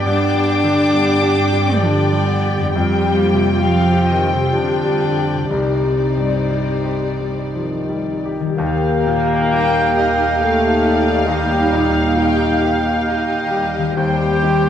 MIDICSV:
0, 0, Header, 1, 13, 480
1, 0, Start_track
1, 0, Tempo, 877193
1, 32, Time_signature, 3, 2, 24, 8
1, 993, Tempo, 913242
1, 2433, Tempo, 977199
1, 3393, Tempo, 1032702
1, 4353, Tempo, 930233
1, 4833, Tempo, 888889
1, 6753, Tempo, 917431
1, 7607, End_track
2, 0, Start_track
2, 0, Title_t, "Flute"
2, 0, Program_c, 0, 73
2, 4358, Note_on_c, 0, 81, 79
2, 4375, Note_on_c, 0, 79, 86
2, 4380, Note_off_c, 0, 81, 0
2, 5771, Note_off_c, 0, 79, 0
2, 5799, Note_on_c, 0, 81, 70
2, 5818, Note_on_c, 0, 79, 76
2, 5824, Note_off_c, 0, 81, 0
2, 6267, Note_off_c, 0, 79, 0
2, 6277, Note_on_c, 0, 79, 78
2, 7207, Note_off_c, 0, 79, 0
2, 7225, Note_on_c, 0, 79, 69
2, 7314, Note_on_c, 0, 81, 64
2, 7319, Note_off_c, 0, 79, 0
2, 7332, Note_on_c, 0, 79, 69
2, 7338, Note_off_c, 0, 81, 0
2, 7403, Note_on_c, 0, 77, 64
2, 7408, Note_off_c, 0, 79, 0
2, 7421, Note_on_c, 0, 79, 69
2, 7427, Note_off_c, 0, 77, 0
2, 7607, Note_off_c, 0, 79, 0
2, 7607, End_track
3, 0, Start_track
3, 0, Title_t, "Oboe"
3, 0, Program_c, 1, 68
3, 4358, Note_on_c, 1, 79, 95
3, 5771, Note_off_c, 1, 79, 0
3, 5796, Note_on_c, 1, 79, 87
3, 6265, Note_off_c, 1, 79, 0
3, 6271, Note_on_c, 1, 79, 78
3, 7204, Note_off_c, 1, 79, 0
3, 7231, Note_on_c, 1, 79, 80
3, 7607, Note_off_c, 1, 79, 0
3, 7607, End_track
4, 0, Start_track
4, 0, Title_t, "Violin section"
4, 0, Program_c, 2, 48
4, 0, Note_on_c, 2, 79, 72
4, 1464, Note_off_c, 2, 79, 0
4, 1475, Note_on_c, 2, 79, 75
4, 2879, Note_off_c, 2, 79, 0
4, 2907, Note_on_c, 2, 74, 58
4, 4234, Note_off_c, 2, 74, 0
4, 4352, Note_on_c, 2, 77, 78
4, 7201, Note_off_c, 2, 77, 0
4, 7223, Note_on_c, 2, 72, 71
4, 7607, Note_off_c, 2, 72, 0
4, 7607, End_track
5, 0, Start_track
5, 0, Title_t, "Violin section"
5, 0, Program_c, 3, 48
5, 28, Note_on_c, 3, 86, 89
5, 972, Note_off_c, 3, 86, 0
5, 991, Note_on_c, 3, 74, 78
5, 1476, Note_on_c, 3, 79, 75
5, 1484, Note_off_c, 3, 74, 0
5, 1936, Note_off_c, 3, 79, 0
5, 1957, Note_on_c, 3, 77, 79
5, 2182, Note_on_c, 3, 75, 64
5, 2192, Note_off_c, 3, 77, 0
5, 2307, Note_off_c, 3, 75, 0
5, 2307, Note_on_c, 3, 72, 59
5, 2428, Note_on_c, 3, 74, 73
5, 2431, Note_off_c, 3, 72, 0
5, 2901, Note_off_c, 3, 74, 0
5, 2903, Note_on_c, 3, 72, 53
5, 4118, Note_off_c, 3, 72, 0
5, 4841, Note_on_c, 3, 79, 90
5, 5064, Note_off_c, 3, 79, 0
5, 5085, Note_on_c, 3, 75, 79
5, 5320, Note_off_c, 3, 75, 0
5, 5330, Note_on_c, 3, 77, 74
5, 5558, Note_on_c, 3, 74, 86
5, 5560, Note_off_c, 3, 77, 0
5, 5793, Note_off_c, 3, 74, 0
5, 5794, Note_on_c, 3, 75, 66
5, 6032, Note_off_c, 3, 75, 0
5, 6032, Note_on_c, 3, 77, 79
5, 6270, Note_on_c, 3, 79, 86
5, 6272, Note_off_c, 3, 77, 0
5, 6506, Note_off_c, 3, 79, 0
5, 6508, Note_on_c, 3, 77, 71
5, 6751, Note_off_c, 3, 77, 0
5, 6756, Note_on_c, 3, 75, 71
5, 7222, Note_on_c, 3, 79, 77
5, 7224, Note_off_c, 3, 75, 0
5, 7607, Note_off_c, 3, 79, 0
5, 7607, End_track
6, 0, Start_track
6, 0, Title_t, "French horn"
6, 0, Program_c, 4, 60
6, 3866, Note_on_c, 4, 63, 91
6, 4331, Note_off_c, 4, 63, 0
6, 4350, Note_on_c, 4, 70, 105
6, 5320, Note_on_c, 4, 69, 106
6, 5328, Note_off_c, 4, 70, 0
6, 5792, Note_off_c, 4, 69, 0
6, 5798, Note_on_c, 4, 67, 107
6, 6275, Note_on_c, 4, 63, 89
6, 6283, Note_off_c, 4, 67, 0
6, 6754, Note_off_c, 4, 63, 0
6, 6980, Note_on_c, 4, 67, 93
6, 7203, Note_off_c, 4, 67, 0
6, 7211, Note_on_c, 4, 67, 112
6, 7607, Note_off_c, 4, 67, 0
6, 7607, End_track
7, 0, Start_track
7, 0, Title_t, "Viola section"
7, 0, Program_c, 5, 48
7, 0, Note_on_c, 5, 67, 74
7, 0, Note_on_c, 5, 74, 77
7, 1465, Note_off_c, 5, 67, 0
7, 1465, Note_off_c, 5, 74, 0
7, 1486, Note_on_c, 5, 65, 84
7, 1488, Note_on_c, 5, 67, 77
7, 2884, Note_off_c, 5, 65, 0
7, 2903, Note_on_c, 5, 63, 68
7, 4233, Note_off_c, 5, 63, 0
7, 4234, Note_off_c, 5, 67, 0
7, 4363, Note_on_c, 5, 63, 95
7, 4366, Note_on_c, 5, 67, 85
7, 7206, Note_off_c, 5, 63, 0
7, 7208, Note_off_c, 5, 67, 0
7, 7223, Note_on_c, 5, 67, 79
7, 7225, Note_on_c, 5, 55, 80
7, 7607, Note_off_c, 5, 55, 0
7, 7607, Note_off_c, 5, 67, 0
7, 7607, End_track
8, 0, Start_track
8, 0, Title_t, "Clarinet"
8, 0, Program_c, 6, 71
8, 35, Note_on_c, 6, 59, 72
8, 360, Note_off_c, 6, 59, 0
8, 509, Note_on_c, 6, 59, 67
8, 751, Note_on_c, 6, 60, 74
8, 759, Note_off_c, 6, 59, 0
8, 992, Note_on_c, 6, 62, 75
8, 1000, Note_off_c, 6, 60, 0
8, 1231, Note_on_c, 6, 59, 70
8, 1239, Note_off_c, 6, 62, 0
8, 1477, Note_off_c, 6, 59, 0
8, 1480, Note_on_c, 6, 60, 70
8, 1702, Note_off_c, 6, 60, 0
8, 1705, Note_on_c, 6, 58, 64
8, 1944, Note_on_c, 6, 60, 67
8, 1952, Note_off_c, 6, 58, 0
8, 2422, Note_on_c, 6, 62, 68
8, 2430, Note_off_c, 6, 60, 0
8, 2889, Note_off_c, 6, 62, 0
8, 2892, Note_on_c, 6, 63, 64
8, 4094, Note_off_c, 6, 63, 0
8, 4352, Note_on_c, 6, 77, 76
8, 5767, Note_off_c, 6, 77, 0
8, 5790, Note_on_c, 6, 77, 69
8, 6262, Note_off_c, 6, 77, 0
8, 6265, Note_on_c, 6, 77, 78
8, 7225, Note_on_c, 6, 72, 71
8, 7233, Note_off_c, 6, 77, 0
8, 7607, Note_off_c, 6, 72, 0
8, 7607, End_track
9, 0, Start_track
9, 0, Title_t, "French horn section"
9, 0, Program_c, 7, 60
9, 0, Note_on_c, 7, 67, 78
9, 0, Note_on_c, 7, 74, 78
9, 1467, Note_off_c, 7, 67, 0
9, 1468, Note_off_c, 7, 74, 0
9, 1486, Note_on_c, 7, 67, 74
9, 1488, Note_on_c, 7, 60, 72
9, 1929, Note_off_c, 7, 67, 0
9, 1930, Note_off_c, 7, 60, 0
9, 1948, Note_on_c, 7, 60, 79
9, 1954, Note_on_c, 7, 67, 73
9, 2884, Note_off_c, 7, 60, 0
9, 2887, Note_off_c, 7, 67, 0
9, 2900, Note_on_c, 7, 74, 62
9, 2901, Note_on_c, 7, 67, 66
9, 3791, Note_off_c, 7, 67, 0
9, 3791, Note_off_c, 7, 74, 0
9, 3870, Note_on_c, 7, 51, 71
9, 4333, Note_off_c, 7, 51, 0
9, 4360, Note_on_c, 7, 58, 112
9, 5320, Note_off_c, 7, 58, 0
9, 5321, Note_on_c, 7, 57, 84
9, 5783, Note_off_c, 7, 57, 0
9, 5788, Note_on_c, 7, 55, 90
9, 6270, Note_off_c, 7, 55, 0
9, 6282, Note_on_c, 7, 51, 72
9, 6758, Note_off_c, 7, 51, 0
9, 6987, Note_on_c, 7, 55, 73
9, 7206, Note_off_c, 7, 55, 0
9, 7219, Note_on_c, 7, 55, 87
9, 7607, Note_off_c, 7, 55, 0
9, 7607, End_track
10, 0, Start_track
10, 0, Title_t, "Grand piano"
10, 0, Program_c, 8, 0
10, 0, Control_c, 8, 64, 127
10, 0, Note_on_c, 8, 67, 58
10, 32, Note_on_c, 8, 43, 70
10, 41, Control_c, 8, 64, 0
10, 126, Note_off_c, 8, 67, 0
10, 130, Control_c, 8, 64, 127
10, 185, Note_on_c, 8, 55, 52
10, 348, Note_on_c, 8, 50, 58
10, 441, Note_off_c, 8, 55, 0
10, 506, Note_on_c, 8, 55, 57
10, 604, Note_off_c, 8, 50, 0
10, 670, Note_on_c, 8, 67, 59
10, 763, Note_off_c, 8, 55, 0
10, 834, Note_on_c, 8, 55, 50
10, 928, Note_off_c, 8, 67, 0
10, 998, Note_on_c, 8, 53, 44
10, 1092, Note_off_c, 8, 55, 0
10, 1155, Note_on_c, 8, 55, 51
10, 1158, Note_off_c, 8, 53, 0
10, 1330, Note_on_c, 8, 67, 51
10, 1421, Note_off_c, 8, 55, 0
10, 1463, Note_off_c, 8, 43, 0
10, 1487, Note_on_c, 8, 41, 73
10, 1488, Note_off_c, 8, 67, 0
10, 1495, Control_c, 8, 64, 0
10, 1587, Control_c, 8, 64, 127
10, 1637, Note_on_c, 8, 55, 54
10, 1795, Note_on_c, 8, 48, 51
10, 1885, Note_off_c, 8, 55, 0
10, 1947, Note_on_c, 8, 55, 46
10, 2045, Note_off_c, 8, 48, 0
10, 2104, Note_on_c, 8, 67, 49
10, 2204, Note_off_c, 8, 55, 0
10, 2265, Note_on_c, 8, 55, 45
10, 2365, Note_off_c, 8, 67, 0
10, 2421, Note_on_c, 8, 53, 41
10, 2522, Note_off_c, 8, 55, 0
10, 2580, Note_on_c, 8, 55, 46
10, 2581, Note_off_c, 8, 53, 0
10, 2738, Note_on_c, 8, 67, 40
10, 2835, Note_off_c, 8, 55, 0
10, 2885, Note_off_c, 8, 41, 0
10, 2899, Note_on_c, 8, 36, 56
10, 2901, Note_off_c, 8, 67, 0
10, 2914, Control_c, 8, 64, 0
10, 3010, Control_c, 8, 64, 127
10, 3061, Note_on_c, 8, 55, 37
10, 3228, Note_on_c, 8, 43, 40
10, 3325, Note_off_c, 8, 55, 0
10, 3393, Note_on_c, 8, 55, 43
10, 3486, Note_off_c, 8, 43, 0
10, 3549, Note_on_c, 8, 67, 48
10, 3648, Note_off_c, 8, 55, 0
10, 3718, Note_on_c, 8, 55, 36
10, 3809, Note_off_c, 8, 67, 0
10, 3879, Note_on_c, 8, 53, 32
10, 3973, Note_off_c, 8, 55, 0
10, 4035, Note_on_c, 8, 55, 41
10, 4038, Note_off_c, 8, 53, 0
10, 4205, Note_on_c, 8, 67, 46
10, 4293, Note_off_c, 8, 55, 0
10, 4333, Note_off_c, 8, 36, 0
10, 4356, Note_on_c, 8, 39, 72
10, 4357, Note_off_c, 8, 67, 0
10, 4363, Control_c, 8, 64, 0
10, 4459, Control_c, 8, 64, 127
10, 4604, Note_on_c, 8, 46, 59
10, 4845, Note_on_c, 8, 55, 50
10, 4983, Note_off_c, 8, 46, 0
10, 5085, Note_on_c, 8, 67, 56
10, 5227, Note_off_c, 8, 55, 0
10, 5324, Note_on_c, 8, 77, 57
10, 5463, Note_off_c, 8, 67, 0
10, 5556, Note_on_c, 8, 67, 51
10, 5698, Note_off_c, 8, 77, 0
10, 5770, Note_off_c, 8, 39, 0
10, 5788, Note_on_c, 8, 39, 68
10, 5800, Control_c, 8, 64, 0
10, 5872, Control_c, 8, 64, 127
10, 5936, Note_off_c, 8, 67, 0
10, 6031, Note_on_c, 8, 46, 53
10, 6269, Note_on_c, 8, 55, 54
10, 6415, Note_off_c, 8, 46, 0
10, 6511, Note_on_c, 8, 67, 54
10, 6655, Note_off_c, 8, 55, 0
10, 6760, Note_on_c, 8, 77, 52
10, 6893, Note_off_c, 8, 67, 0
10, 6987, Note_on_c, 8, 67, 51
10, 7132, Note_off_c, 8, 77, 0
10, 7201, Note_off_c, 8, 39, 0
10, 7223, Note_off_c, 8, 67, 0
10, 7226, Note_on_c, 8, 39, 64
10, 7232, Control_c, 8, 64, 0
10, 7324, Control_c, 8, 64, 127
10, 7470, Note_on_c, 8, 51, 57
10, 7607, Note_off_c, 8, 39, 0
10, 7607, Note_off_c, 8, 51, 0
10, 7607, End_track
11, 0, Start_track
11, 0, Title_t, "Harp"
11, 0, Program_c, 10, 46
11, 0, Note_on_c, 10, 43, 68
11, 663, Note_off_c, 10, 43, 0
11, 1392, Note_on_c, 10, 41, 72
11, 1417, Note_on_c, 10, 55, 55
11, 1442, Note_on_c, 10, 67, 60
11, 1466, Note_on_c, 10, 72, 58
11, 2818, Note_on_c, 10, 48, 54
11, 2835, Note_off_c, 10, 55, 0
11, 2841, Note_on_c, 10, 55, 40
11, 2857, Note_off_c, 10, 67, 0
11, 2863, Note_on_c, 10, 67, 46
11, 2879, Note_off_c, 10, 41, 0
11, 2885, Note_on_c, 10, 74, 41
11, 3442, Note_off_c, 10, 72, 0
11, 4275, Note_on_c, 10, 51, 77
11, 4290, Note_off_c, 10, 55, 0
11, 4296, Note_on_c, 10, 55, 68
11, 4311, Note_off_c, 10, 67, 0
11, 4317, Note_on_c, 10, 67, 69
11, 4331, Note_off_c, 10, 48, 0
11, 4337, Note_on_c, 10, 77, 64
11, 4364, Note_off_c, 10, 74, 0
11, 6346, Note_off_c, 10, 51, 0
11, 6370, Note_off_c, 10, 55, 0
11, 6395, Note_off_c, 10, 67, 0
11, 6418, Note_off_c, 10, 77, 0
11, 7131, Note_on_c, 10, 51, 69
11, 7155, Note_on_c, 10, 55, 61
11, 7179, Note_on_c, 10, 67, 62
11, 7201, Note_on_c, 10, 72, 57
11, 7607, Note_off_c, 10, 51, 0
11, 7607, Note_off_c, 10, 55, 0
11, 7607, Note_off_c, 10, 67, 0
11, 7607, Note_off_c, 10, 72, 0
11, 7607, End_track
12, 0, Start_track
12, 0, Title_t, "Cello section"
12, 0, Program_c, 11, 48
12, 33, Note_on_c, 11, 62, 103
12, 974, Note_off_c, 11, 62, 0
12, 991, Note_on_c, 11, 50, 86
12, 1484, Note_off_c, 11, 50, 0
12, 1485, Note_on_c, 11, 55, 101
12, 1940, Note_off_c, 11, 55, 0
12, 1949, Note_on_c, 11, 53, 85
12, 2185, Note_on_c, 11, 51, 78
12, 2188, Note_off_c, 11, 53, 0
12, 2308, Note_off_c, 11, 51, 0
12, 2312, Note_on_c, 11, 48, 77
12, 2430, Note_on_c, 11, 50, 84
12, 2433, Note_off_c, 11, 48, 0
12, 2902, Note_off_c, 11, 50, 0
12, 2902, Note_on_c, 11, 48, 65
12, 4117, Note_off_c, 11, 48, 0
12, 4355, Note_on_c, 11, 39, 86
12, 7202, Note_off_c, 11, 39, 0
12, 7222, Note_on_c, 11, 39, 82
12, 7607, Note_off_c, 11, 39, 0
12, 7607, End_track
13, 0, Start_track
13, 0, Title_t, "Double bass section"
13, 0, Program_c, 12, 48
13, 0, Note_on_c, 12, 43, 70
13, 1469, Note_off_c, 12, 43, 0
13, 1487, Note_on_c, 12, 41, 69
13, 2885, Note_off_c, 12, 41, 0
13, 2908, Note_on_c, 12, 36, 50
13, 4235, Note_off_c, 12, 36, 0
13, 4357, Note_on_c, 12, 39, 72
13, 7204, Note_off_c, 12, 39, 0
13, 7225, Note_on_c, 12, 39, 70
13, 7607, Note_off_c, 12, 39, 0
13, 7607, End_track
0, 0, End_of_file